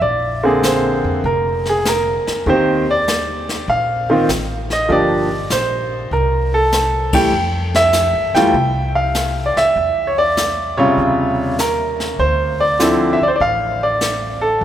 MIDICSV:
0, 0, Header, 1, 5, 480
1, 0, Start_track
1, 0, Key_signature, -1, "minor"
1, 0, Tempo, 607903
1, 22, Time_signature, 4, 2, 24, 8
1, 11563, End_track
2, 0, Start_track
2, 0, Title_t, "Grand piano"
2, 0, Program_c, 0, 0
2, 15, Note_on_c, 0, 74, 73
2, 343, Note_on_c, 0, 58, 60
2, 344, Note_on_c, 0, 50, 62
2, 353, Note_on_c, 0, 60, 54
2, 357, Note_on_c, 0, 68, 66
2, 512, Note_on_c, 0, 72, 65
2, 515, Note_off_c, 0, 74, 0
2, 951, Note_off_c, 0, 50, 0
2, 951, Note_off_c, 0, 58, 0
2, 956, Note_off_c, 0, 60, 0
2, 958, Note_off_c, 0, 68, 0
2, 958, Note_off_c, 0, 72, 0
2, 992, Note_on_c, 0, 70, 74
2, 1325, Note_off_c, 0, 70, 0
2, 1338, Note_on_c, 0, 68, 71
2, 1483, Note_off_c, 0, 68, 0
2, 1485, Note_on_c, 0, 70, 75
2, 1925, Note_off_c, 0, 70, 0
2, 1949, Note_on_c, 0, 51, 65
2, 1955, Note_on_c, 0, 58, 53
2, 1960, Note_on_c, 0, 60, 53
2, 1966, Note_on_c, 0, 67, 64
2, 1969, Note_on_c, 0, 72, 81
2, 2242, Note_off_c, 0, 51, 0
2, 2245, Note_off_c, 0, 58, 0
2, 2248, Note_off_c, 0, 60, 0
2, 2250, Note_off_c, 0, 67, 0
2, 2294, Note_off_c, 0, 72, 0
2, 2295, Note_on_c, 0, 74, 83
2, 2887, Note_off_c, 0, 74, 0
2, 2918, Note_on_c, 0, 77, 81
2, 3234, Note_on_c, 0, 51, 64
2, 3237, Note_on_c, 0, 58, 54
2, 3238, Note_on_c, 0, 60, 59
2, 3247, Note_on_c, 0, 65, 66
2, 3362, Note_off_c, 0, 77, 0
2, 3373, Note_off_c, 0, 51, 0
2, 3374, Note_off_c, 0, 58, 0
2, 3375, Note_off_c, 0, 60, 0
2, 3379, Note_off_c, 0, 65, 0
2, 3732, Note_on_c, 0, 75, 77
2, 3859, Note_on_c, 0, 53, 55
2, 3862, Note_on_c, 0, 58, 48
2, 3870, Note_on_c, 0, 62, 48
2, 3872, Note_on_c, 0, 67, 63
2, 3882, Note_off_c, 0, 75, 0
2, 3885, Note_on_c, 0, 74, 81
2, 4157, Note_off_c, 0, 53, 0
2, 4159, Note_off_c, 0, 58, 0
2, 4163, Note_off_c, 0, 62, 0
2, 4164, Note_off_c, 0, 67, 0
2, 4359, Note_on_c, 0, 72, 78
2, 4371, Note_off_c, 0, 74, 0
2, 4802, Note_off_c, 0, 72, 0
2, 4838, Note_on_c, 0, 70, 70
2, 5137, Note_off_c, 0, 70, 0
2, 5164, Note_on_c, 0, 69, 83
2, 5631, Note_on_c, 0, 52, 51
2, 5633, Note_on_c, 0, 55, 46
2, 5642, Note_on_c, 0, 57, 50
2, 5642, Note_on_c, 0, 67, 57
2, 5643, Note_on_c, 0, 79, 86
2, 5653, Note_off_c, 0, 69, 0
2, 5771, Note_off_c, 0, 52, 0
2, 5772, Note_off_c, 0, 55, 0
2, 5777, Note_off_c, 0, 57, 0
2, 5777, Note_off_c, 0, 67, 0
2, 6125, Note_on_c, 0, 76, 103
2, 6133, Note_off_c, 0, 79, 0
2, 6568, Note_off_c, 0, 76, 0
2, 6590, Note_on_c, 0, 79, 88
2, 6596, Note_on_c, 0, 52, 69
2, 6600, Note_on_c, 0, 55, 59
2, 6607, Note_on_c, 0, 57, 54
2, 6611, Note_on_c, 0, 65, 74
2, 6733, Note_off_c, 0, 52, 0
2, 6735, Note_off_c, 0, 55, 0
2, 6739, Note_off_c, 0, 57, 0
2, 6741, Note_off_c, 0, 65, 0
2, 7040, Note_off_c, 0, 79, 0
2, 7070, Note_on_c, 0, 77, 77
2, 7468, Note_on_c, 0, 74, 72
2, 7489, Note_off_c, 0, 77, 0
2, 7548, Note_off_c, 0, 74, 0
2, 7559, Note_on_c, 0, 76, 93
2, 7953, Note_on_c, 0, 73, 65
2, 7973, Note_off_c, 0, 76, 0
2, 8030, Note_off_c, 0, 73, 0
2, 8040, Note_on_c, 0, 74, 89
2, 8485, Note_off_c, 0, 74, 0
2, 8505, Note_on_c, 0, 49, 66
2, 8508, Note_on_c, 0, 73, 84
2, 8514, Note_on_c, 0, 55, 54
2, 8519, Note_on_c, 0, 48, 59
2, 8522, Note_on_c, 0, 65, 76
2, 9112, Note_off_c, 0, 49, 0
2, 9112, Note_off_c, 0, 73, 0
2, 9116, Note_off_c, 0, 55, 0
2, 9118, Note_off_c, 0, 48, 0
2, 9120, Note_off_c, 0, 65, 0
2, 9159, Note_on_c, 0, 70, 70
2, 9601, Note_off_c, 0, 70, 0
2, 9629, Note_on_c, 0, 72, 86
2, 9953, Note_on_c, 0, 74, 84
2, 9963, Note_off_c, 0, 72, 0
2, 10101, Note_on_c, 0, 50, 60
2, 10106, Note_on_c, 0, 53, 54
2, 10109, Note_on_c, 0, 60, 58
2, 10118, Note_on_c, 0, 64, 71
2, 10367, Note_on_c, 0, 76, 68
2, 10383, Note_off_c, 0, 74, 0
2, 10397, Note_off_c, 0, 50, 0
2, 10399, Note_off_c, 0, 53, 0
2, 10401, Note_off_c, 0, 60, 0
2, 10405, Note_off_c, 0, 64, 0
2, 10447, Note_off_c, 0, 76, 0
2, 10447, Note_on_c, 0, 74, 71
2, 10484, Note_on_c, 0, 72, 69
2, 10493, Note_off_c, 0, 74, 0
2, 10535, Note_off_c, 0, 72, 0
2, 10547, Note_on_c, 0, 74, 73
2, 10589, Note_off_c, 0, 74, 0
2, 10591, Note_on_c, 0, 77, 84
2, 10922, Note_on_c, 0, 74, 75
2, 10924, Note_off_c, 0, 77, 0
2, 11381, Note_on_c, 0, 69, 76
2, 11411, Note_off_c, 0, 74, 0
2, 11563, Note_off_c, 0, 69, 0
2, 11563, End_track
3, 0, Start_track
3, 0, Title_t, "Upright bass"
3, 0, Program_c, 1, 32
3, 10, Note_on_c, 1, 34, 72
3, 793, Note_off_c, 1, 34, 0
3, 822, Note_on_c, 1, 41, 65
3, 969, Note_off_c, 1, 41, 0
3, 978, Note_on_c, 1, 29, 71
3, 1758, Note_off_c, 1, 29, 0
3, 1942, Note_on_c, 1, 39, 74
3, 2874, Note_off_c, 1, 39, 0
3, 2903, Note_on_c, 1, 34, 71
3, 3354, Note_off_c, 1, 34, 0
3, 3385, Note_on_c, 1, 33, 62
3, 3835, Note_off_c, 1, 33, 0
3, 3867, Note_on_c, 1, 31, 75
3, 4316, Note_off_c, 1, 31, 0
3, 4345, Note_on_c, 1, 34, 69
3, 4795, Note_off_c, 1, 34, 0
3, 4826, Note_on_c, 1, 36, 65
3, 5755, Note_off_c, 1, 36, 0
3, 5785, Note_on_c, 1, 41, 79
3, 6394, Note_off_c, 1, 41, 0
3, 6421, Note_on_c, 1, 43, 54
3, 6573, Note_off_c, 1, 43, 0
3, 6579, Note_on_c, 1, 40, 56
3, 6731, Note_off_c, 1, 40, 0
3, 6743, Note_on_c, 1, 36, 71
3, 7519, Note_off_c, 1, 36, 0
3, 7709, Note_on_c, 1, 40, 70
3, 8636, Note_off_c, 1, 40, 0
3, 8667, Note_on_c, 1, 39, 67
3, 9594, Note_off_c, 1, 39, 0
3, 9627, Note_on_c, 1, 38, 77
3, 10400, Note_off_c, 1, 38, 0
3, 10582, Note_on_c, 1, 33, 68
3, 11512, Note_off_c, 1, 33, 0
3, 11536, Note_on_c, 1, 29, 74
3, 11563, Note_off_c, 1, 29, 0
3, 11563, End_track
4, 0, Start_track
4, 0, Title_t, "Muted upright bass strokes"
4, 1799, Note_on_c, 9, 29, 35
4, 1878, Note_off_c, 9, 29, 0
4, 7550, Note_on_c, 9, 29, 33
4, 7629, Note_off_c, 9, 29, 0
4, 10430, Note_on_c, 9, 29, 33
4, 10509, Note_off_c, 9, 29, 0
4, 11563, End_track
5, 0, Start_track
5, 0, Title_t, "Drums"
5, 12, Note_on_c, 9, 25, 43
5, 14, Note_on_c, 9, 36, 29
5, 93, Note_off_c, 9, 36, 0
5, 498, Note_on_c, 9, 44, 52
5, 501, Note_on_c, 9, 38, 55
5, 577, Note_off_c, 9, 44, 0
5, 580, Note_off_c, 9, 38, 0
5, 974, Note_off_c, 9, 25, 0
5, 974, Note_on_c, 9, 25, 48
5, 977, Note_on_c, 9, 36, 31
5, 1056, Note_off_c, 9, 36, 0
5, 1307, Note_on_c, 9, 38, 31
5, 1386, Note_off_c, 9, 38, 0
5, 1461, Note_on_c, 9, 44, 50
5, 1464, Note_on_c, 9, 38, 47
5, 1540, Note_off_c, 9, 44, 0
5, 1543, Note_off_c, 9, 38, 0
5, 1795, Note_on_c, 9, 38, 35
5, 1874, Note_off_c, 9, 38, 0
5, 1945, Note_on_c, 9, 36, 33
5, 1949, Note_off_c, 9, 25, 0
5, 1949, Note_on_c, 9, 25, 44
5, 2024, Note_off_c, 9, 36, 0
5, 2430, Note_on_c, 9, 44, 42
5, 2432, Note_on_c, 9, 38, 56
5, 2509, Note_off_c, 9, 44, 0
5, 2511, Note_off_c, 9, 38, 0
5, 2756, Note_on_c, 9, 38, 36
5, 2835, Note_off_c, 9, 38, 0
5, 2907, Note_off_c, 9, 25, 0
5, 2907, Note_on_c, 9, 25, 48
5, 2907, Note_on_c, 9, 36, 31
5, 2986, Note_off_c, 9, 36, 0
5, 3386, Note_on_c, 9, 44, 45
5, 3388, Note_on_c, 9, 38, 49
5, 3465, Note_off_c, 9, 44, 0
5, 3467, Note_off_c, 9, 38, 0
5, 3712, Note_on_c, 9, 38, 34
5, 3791, Note_off_c, 9, 38, 0
5, 3867, Note_on_c, 9, 36, 33
5, 3868, Note_off_c, 9, 25, 0
5, 3868, Note_on_c, 9, 25, 51
5, 3946, Note_off_c, 9, 36, 0
5, 4343, Note_on_c, 9, 44, 46
5, 4345, Note_on_c, 9, 38, 54
5, 4422, Note_off_c, 9, 44, 0
5, 4424, Note_off_c, 9, 38, 0
5, 4827, Note_on_c, 9, 36, 35
5, 4830, Note_off_c, 9, 25, 0
5, 4830, Note_on_c, 9, 25, 43
5, 4906, Note_off_c, 9, 36, 0
5, 5308, Note_on_c, 9, 44, 47
5, 5310, Note_on_c, 9, 38, 52
5, 5387, Note_off_c, 9, 44, 0
5, 5389, Note_off_c, 9, 38, 0
5, 5628, Note_on_c, 9, 51, 61
5, 5631, Note_on_c, 9, 36, 73
5, 5707, Note_off_c, 9, 51, 0
5, 5710, Note_off_c, 9, 36, 0
5, 5783, Note_off_c, 9, 25, 0
5, 5783, Note_on_c, 9, 25, 47
5, 6115, Note_on_c, 9, 38, 42
5, 6194, Note_off_c, 9, 38, 0
5, 6260, Note_on_c, 9, 44, 50
5, 6262, Note_on_c, 9, 38, 46
5, 6339, Note_off_c, 9, 44, 0
5, 6341, Note_off_c, 9, 38, 0
5, 6593, Note_on_c, 9, 38, 31
5, 6672, Note_off_c, 9, 38, 0
5, 6743, Note_on_c, 9, 36, 29
5, 6745, Note_off_c, 9, 25, 0
5, 6745, Note_on_c, 9, 25, 52
5, 6822, Note_off_c, 9, 36, 0
5, 7221, Note_on_c, 9, 44, 47
5, 7224, Note_on_c, 9, 38, 53
5, 7300, Note_off_c, 9, 44, 0
5, 7303, Note_off_c, 9, 38, 0
5, 7554, Note_on_c, 9, 38, 32
5, 7633, Note_off_c, 9, 38, 0
5, 7705, Note_on_c, 9, 36, 31
5, 7710, Note_off_c, 9, 25, 0
5, 7710, Note_on_c, 9, 25, 43
5, 7784, Note_off_c, 9, 36, 0
5, 8188, Note_on_c, 9, 44, 53
5, 8190, Note_on_c, 9, 38, 52
5, 8267, Note_off_c, 9, 44, 0
5, 8269, Note_off_c, 9, 38, 0
5, 8666, Note_on_c, 9, 36, 33
5, 8676, Note_off_c, 9, 25, 0
5, 8676, Note_on_c, 9, 25, 46
5, 8745, Note_off_c, 9, 36, 0
5, 9149, Note_on_c, 9, 44, 55
5, 9151, Note_on_c, 9, 38, 52
5, 9228, Note_off_c, 9, 44, 0
5, 9230, Note_off_c, 9, 38, 0
5, 9475, Note_on_c, 9, 38, 32
5, 9554, Note_off_c, 9, 38, 0
5, 9626, Note_on_c, 9, 36, 35
5, 9631, Note_off_c, 9, 25, 0
5, 9631, Note_on_c, 9, 25, 48
5, 9705, Note_off_c, 9, 36, 0
5, 10104, Note_on_c, 9, 44, 51
5, 10106, Note_on_c, 9, 38, 54
5, 10183, Note_off_c, 9, 44, 0
5, 10185, Note_off_c, 9, 38, 0
5, 10585, Note_on_c, 9, 36, 34
5, 10592, Note_off_c, 9, 25, 0
5, 10592, Note_on_c, 9, 25, 43
5, 10664, Note_off_c, 9, 36, 0
5, 11060, Note_on_c, 9, 44, 50
5, 11063, Note_on_c, 9, 38, 49
5, 11139, Note_off_c, 9, 44, 0
5, 11142, Note_off_c, 9, 38, 0
5, 11563, Note_off_c, 9, 25, 0
5, 11563, End_track
0, 0, End_of_file